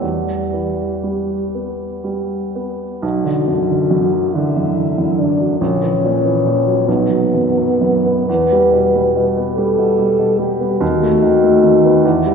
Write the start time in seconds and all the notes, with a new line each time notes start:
0.01 E2 G3
0.53 E3
1.03 G3
1.55 B3
2.04 G3
2.55 B3
3.02 B1 F#4
3.25 D3
3.48 F#2
3.69 D3
3.91 F#2
4.13 F#3
4.34 D3 E4
4.57 F#2
4.77 D3
4.98 F#2
5.19 D3 D4
5.40 F#3
5.60 A#1 C#4
5.83 E3
6.04 A#2
6.25 E3
6.45 A#2
6.67 F#3
6.88 B1 B3
7.10 F#3
7.34 F#2
7.58 F#3
7.81 F#2
8.06 B3
8.28 E2 B4
8.52 G3
8.73 B2
8.96 G3
9.16 B2
9.37 B3
9.55 G3 A4
9.79 B2
9.98 G3
10.19 B2
10.38 G3 G4
10.60 B3
10.80 D#2 F#4
11.02 A3
11.23 D#3
11.43 A3
11.63 D#3
11.85 B3
12.05 E2 E4
12.26 G3